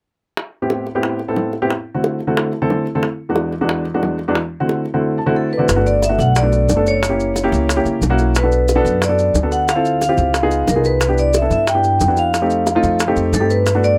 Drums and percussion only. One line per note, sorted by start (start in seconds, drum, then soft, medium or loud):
0.37 high bongo medium
0.70 high bongo medium
0.87 high bongo soft
1.03 high bongo medium
1.19 high bongo soft
1.36 high bongo soft
1.36 low bongo medium
1.53 high bongo soft
1.70 high bongo medium
2.04 high bongo medium
2.20 high bongo soft
2.37 high bongo medium
2.53 high bongo soft
2.70 high bongo soft
2.70 low bongo medium
2.87 high bongo soft
3.03 high bongo medium
3.36 high bongo medium
3.53 high bongo soft
3.69 high bongo medium
3.85 high bongo soft
4.03 high bongo soft
4.03 low bongo medium
4.19 high bongo soft
4.35 high bongo medium
4.69 high bongo medium
4.86 high bongo soft
5.69 high bongo medium
5.69 maracas medium
5.86 maracas soft
6.02 high bongo medium
6.02 maracas medium
6.19 high bongo soft
6.19 maracas soft
6.36 high bongo medium
6.36 maracas medium
6.52 high bongo soft
6.52 maracas soft
6.69 high bongo soft
6.69 low bongo medium
6.69 maracas medium
6.86 high bongo soft
6.86 maracas soft
7.03 high bongo medium
7.03 maracas medium
7.20 maracas soft
7.36 high bongo medium
7.36 maracas medium
7.53 high bongo soft
7.53 maracas soft
7.69 high bongo medium
7.69 maracas medium
7.86 high bongo soft
7.86 maracas soft
8.02 high bongo soft
8.02 low bongo medium
8.02 maracas medium
8.18 high bongo soft
8.18 maracas soft
8.35 high bongo medium
8.35 maracas medium
8.52 maracas soft
8.68 high bongo medium
8.68 maracas medium
8.85 high bongo soft
8.85 maracas soft
9.02 high bongo medium
9.02 maracas medium
9.19 high bongo soft
9.19 maracas soft
9.35 high bongo soft
9.35 low bongo medium
9.35 maracas medium
9.52 high bongo soft
9.52 maracas soft
9.68 high bongo medium
9.68 maracas medium
9.85 maracas soft
10.02 high bongo medium
10.02 maracas medium
10.18 high bongo soft
10.18 maracas soft
10.34 high bongo medium
10.34 maracas medium
10.51 high bongo soft
10.51 maracas soft
10.68 high bongo soft
10.68 low bongo medium
10.68 maracas medium
10.84 high bongo soft
10.84 maracas soft
11.01 high bongo medium
11.01 maracas medium
11.18 maracas soft
11.34 high bongo medium
11.34 maracas medium
11.51 high bongo soft
11.51 maracas soft
11.67 high bongo medium
11.67 maracas medium
11.84 high bongo soft
11.84 maracas soft
12.00 high bongo soft
12.00 low bongo medium
12.00 maracas medium
12.17 high bongo soft
12.17 maracas soft
12.34 high bongo medium
12.34 maracas medium
12.50 maracas soft
12.67 high bongo medium
12.67 maracas medium
12.83 high bongo soft
12.83 maracas soft
13.00 high bongo medium
13.00 maracas medium
13.16 high bongo soft
13.16 maracas soft
13.33 high bongo soft
13.33 low bongo medium
13.33 maracas medium
13.50 high bongo soft
13.50 maracas soft
13.66 high bongo medium
13.66 maracas medium
13.84 maracas soft